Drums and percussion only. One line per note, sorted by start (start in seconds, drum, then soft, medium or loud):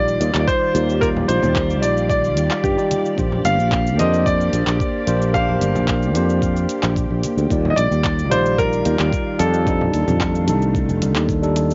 0.08 cabasa soft
0.21 closed hi-hat medium
0.21 cabasa medium
0.35 clap medium
0.35 cabasa soft
0.48 kick loud
0.48 cabasa soft
0.75 closed hi-hat medium
0.75 cabasa medium
0.90 cabasa soft
1.02 kick loud
1.02 high bongo medium
1.02 cabasa soft
1.16 low conga medium
1.29 closed hi-hat medium
1.29 cabasa medium
1.42 high conga medium
1.42 low conga medium
1.42 cabasa soft
1.56 kick loud
1.56 clap medium
1.56 cabasa soft
1.70 cabasa soft
1.83 closed hi-hat medium
1.83 cabasa medium
1.97 cabasa soft
2.10 kick loud
2.10 cabasa soft
2.24 cabasa soft
2.37 closed hi-hat medium
2.37 cabasa medium
2.51 clap medium
2.51 cabasa soft
2.64 kick loud
2.64 cabasa soft
2.78 cabasa soft
2.91 closed hi-hat medium
2.91 high conga medium
2.91 cabasa medium
3.05 cabasa soft
3.18 kick loud
3.18 cabasa soft
3.32 low conga medium
3.45 closed hi-hat medium
3.45 cabasa medium
3.59 cabasa soft
3.72 kick loud
3.72 clap medium
3.72 cabasa soft
3.87 cabasa soft
3.99 closed hi-hat medium
3.99 high conga medium
3.99 cabasa medium
4.13 cabasa soft
4.26 kick medium
4.26 cabasa soft
4.40 cabasa soft
4.53 closed hi-hat medium
4.53 cabasa medium
4.67 clap medium
4.67 cabasa soft
4.80 kick loud
4.80 cabasa soft
5.07 closed hi-hat medium
5.07 cabasa medium
5.22 cabasa soft
5.34 kick loud
5.34 high bongo medium
5.34 cabasa soft
5.48 low conga medium
5.61 closed hi-hat medium
5.61 cabasa medium
5.75 high conga medium
5.75 low conga medium
5.75 cabasa soft
5.88 kick loud
5.88 clap medium
5.88 cabasa soft
6.03 cabasa soft
6.15 closed hi-hat medium
6.15 cabasa medium
6.30 cabasa soft
6.42 kick medium
6.42 cabasa soft
6.57 cabasa soft
6.69 closed hi-hat medium
6.69 cabasa medium
6.83 clap medium
6.83 cabasa soft
6.96 kick loud
6.96 cabasa soft
7.24 closed hi-hat medium
7.24 high conga medium
7.24 cabasa medium
7.38 cabasa soft
7.51 kick loud
7.51 cabasa soft
7.65 low conga medium
7.78 closed hi-hat medium
7.78 cabasa medium
7.92 cabasa soft
8.05 kick loud
8.05 clap medium
8.05 cabasa soft
8.19 cabasa soft
8.32 closed hi-hat medium
8.32 high conga medium
8.32 cabasa medium
8.46 cabasa soft
8.59 kick medium
8.59 cabasa soft
8.73 cabasa soft
8.85 closed hi-hat medium
8.85 cabasa medium
9.00 clap medium
9.00 cabasa soft
9.13 kick loud
9.13 cabasa soft
9.39 closed hi-hat medium
9.39 cabasa medium
9.54 cabasa soft
9.67 kick loud
9.67 high bongo medium
9.67 cabasa soft
9.81 low conga medium
9.93 closed hi-hat loud
9.93 cabasa medium
10.07 high conga medium
10.07 low conga medium
10.07 cabasa soft
10.21 kick loud
10.21 clap medium
10.21 cabasa soft
10.35 cabasa soft
10.47 closed hi-hat medium
10.47 cabasa medium
10.62 cabasa soft
10.75 kick medium
10.75 cabasa soft
10.89 cabasa soft
11.02 closed hi-hat medium
11.02 high conga medium
11.02 cabasa medium
11.16 clap medium
11.16 cabasa soft
11.29 kick medium
11.29 cabasa soft
11.43 cabasa soft
11.56 closed hi-hat loud
11.56 high bongo medium
11.56 cabasa medium
11.70 cabasa soft